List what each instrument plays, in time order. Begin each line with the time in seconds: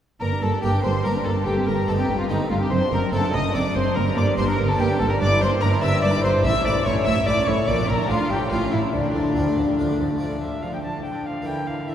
0.21 double bass section G1, cello section G2, harpsichord G2, viola section A#3, violin A#4, violin section A#4 A#5
0.31 viola section D4
0.41 double bass section G1, harpsichord G2, cello section G2, viola section A#3, violin A4, violin section A4 A5
0.54 viola section D4
0.62 double bass section G1, harpsichord G2 A#3 D4 G4, cello section G2, viola section A#3, violin G4, violin section G4 G5
0.74 viola section D4
0.83 double bass section G1, harpsichord G2, cello section G2, viola section A#3, violin C5, violin section C5 C6
0.95 viola section D4
1.03 double bass section G1, harpsichord G2 A#3 D4 G4, cello section G2, viola section A#3, violin A#4, violin section A#4 A#5
1.15 viola section D4
1.24 double bass section G1, harpsichord G2, cello section G2, viola section A#3, violin A4, violin section A4 A5
1.37 viola section D4
1.45 double bass section G1, harpsichord G2, cello section G2, viola section A3, violin G4, violin section G4 G5
1.57 viola section C4
1.66 double bass section G1, harpsichord G2, cello section G2, viola section A3, violin section A#4 A#5, violin A#4
1.78 viola section C4
1.87 double bass section G1, harpsichord G2 C4 D#4 A4, cello section G2, viola section A3, violin A4, violin section A4 A5
1.97 viola section C4, violin G4, violin section G4 G5
2.08 double bass section G1, harpsichord G2, cello section G2, viola section A3
2.18 viola section C4, violin F4, violin section F4 F5
2.29 double bass section G1, harpsichord G2 C4 D#4 A4, cello section G2, viola section A3, violin D#4, violin section D#4 D#5
2.41 viola section C4
2.49 double bass section G1, harpsichord G2, cello section G2, viola section A3, violin F4, violin section F4 F5
2.60 viola section C4, violin G4, violin section G4 G5
2.70 double bass section F#1, harpsichord F#2, cello section F#2, viola section C4, violin C5, violin section C5 C6
2.82 viola section D4
2.91 double bass section F#1, harpsichord F#2, cello section F#2, viola section C4, violin A#4, violin section A#4 A#5
3.02 viola section D4
3.12 double bass section F#1, harpsichord F#2 A3 D4 A4, cello section F#2, viola section C4, violin section A4 A5, violin A4
3.22 viola section D4
3.33 double bass section F#1, harpsichord F#2, cello section F#2, viola section C4, violin section D#5 D#6, violin D#5
3.45 viola section D4
3.54 double bass section F#1, harpsichord F#2 A3 D4 A4, cello section F#2, viola section C4, violin D5, violin section D5 D6
3.65 viola section D4
3.74 double bass section F#1, harpsichord F#2, cello section F#2, viola section C4, violin section C5 C6, violin C5
3.86 viola section D4
3.95 double bass section G1, cello section G2, harpsichord G2, viola section A#3, violin A#4, violin section A#4 A#5
4.07 viola section D4
4.16 double bass section G1, cello section G2, harpsichord G2, viola section A#3, violin section D5 D6, violin D5
4.27 viola section D4
4.37 double bass section G1, harpsichord G2 A#3 D4 G4, cello section G2, viola section A#3, violin C5, violin section C5 C6
4.47 viola section D4, violin section A#4 A#5, violin A#4
4.58 double bass section G1, harpsichord G2, cello section G2, viola section A#3
4.68 viola section D4, violin A4, violin section A4 A5
4.78 double bass section G1, cello section G2, harpsichord G2 A#3 D4 G4, viola section A#3, violin G4, violin section G4 G5
4.88 viola section D4
4.99 double bass section G1, cello section G2, harpsichord G2, viola section A#3, violin A4, violin section A4 A5
5.09 viola section D4, violin A#4, violin section A#4 A#5
5.20 double bass section G1, harpsichord G2, cello section G2, viola section D4, violin D5, violin section D5 D6
5.30 viola section E4
5.40 double bass section G1, cello section G2, harpsichord G2, viola section D4, violin C5, violin section C5 C6
5.52 viola section E4
5.61 double bass section G1, harpsichord G2 A#3 E4 G4, cello section G2, viola section D4, violin A#4, violin section A#4 A#5
5.72 viola section E4
5.82 double bass section G1, harpsichord G2, cello section G2, viola section D4, violin E5, violin section E5 E6
5.93 viola section E4
6.02 double bass section G1, harpsichord G2 A#3 E4 G4, cello section G2, viola section D4, violin section D5 D6, violin D5
6.13 viola section E4
6.23 double bass section G1, cello section G2, harpsichord G2, viola section D4, violin C5, violin section C5 C6
6.34 viola section E4
6.43 double bass section A1, harpsichord A2, cello section A2, viola section E4, violin section E5 E6, violin E5
6.55 viola section C#4
6.64 double bass section A1, harpsichord A2, cello section A2, viola section E4, violin section D5 D6, violin D5
6.75 viola section C#4
6.84 double bass section A1, cello section A2, harpsichord A2 A3 C#4 E4, viola section E4, violin section C#5 C#6, violin C#5
6.95 viola section C#4
7.04 double bass section A1, harpsichord A2, cello section A2, viola section E4, violin section E5 E6, violin E5
7.17 viola section C#4
7.26 double bass section A1, harpsichord A2 A3 C#4 E4, cello section A2, viola section E4, violin D5, violin section D5 D6
7.38 viola section C#4
7.47 double bass section A1, harpsichord A2, cello section A2, viola section E4, violin C#5, violin section C#5 C#6
7.58 viola section C#4
7.67 double bass section A#1, harpsichord A#2 D4 G4, cello section A#2, viola section A#3, violin D5, violin section D5 D6
7.79 viola section D4
7.88 double bass section A#1, harpsichord A#2, cello section A#2, viola section A#3, violin A#4, violin section A#4 A#5
7.99 viola section D4
8.09 double bass section A1, cello section A2, harpsichord A2 A3 D4 F4, violin F4, viola section F4, violin section F4 F5
8.21 viola section D4
8.30 double bass section A1, harpsichord A2, cello section A2, viola section F4, violin G4, violin section G4 G5
8.42 viola section D4
8.51 double bass section A1, cello section A2, harpsichord A2 A3 C#4 G4, viola section E4, violin F4, violin section F4 F5
8.63 viola section C#4
8.72 double bass section A1, harpsichord A2, cello section A2, violin E4, violin section E4 E5, viola section E4
8.85 viola section C#4
8.93 double bass section D2, harpsichord D3, cello section D3, viola section F3, violin section D4 D5, violin D4
9.06 viola section A3
9.15 double bass section D2, harpsichord D3, cello section D3, viola section F3
9.27 viola section A3
9.36 double bass section D2, harpsichord D3 A3 D4 F4, cello section D3, viola section F3
9.49 viola section A3
9.58 double bass section D2, cello section D3, harpsichord D3, viola section F3
9.68 viola section A3
9.78 double bass section D2, harpsichord D3 A3 D4 F4, cello section D3, viola section F3
9.91 viola section A3
9.99 double bass section D2, cello section D3, harpsichord D3, viola section F3
10.12 viola section A3
10.17 cello section D3, harpsichord A3 D4 F4, violin section D4, violin D5
10.21 harpsichord D3, viola section F3, violin section A4
10.42 viola section F3, violin section D4 A4, violin E5
10.62 harpsichord D3, cello section D3, viola section F3, violin section D4 A4, violin F5
10.73 violin G5
10.83 viola section F3, violin section D4 A4, violin A5
11.04 cello section D3, harpsichord D3, viola section F3, violin section D4 A4, violin G5
11.26 viola section F3, violin section D4 A4, violin F5
11.42 harpsichord A#3 E4, violin G5
11.46 cello section D3, harpsichord D3, viola section E3, violin section E4 A#4
11.66 viola section E3, violin section E4 A#4, violin F5
11.87 cello section D3, harpsichord D3, viola section E3, violin section E4 A#4, violin E5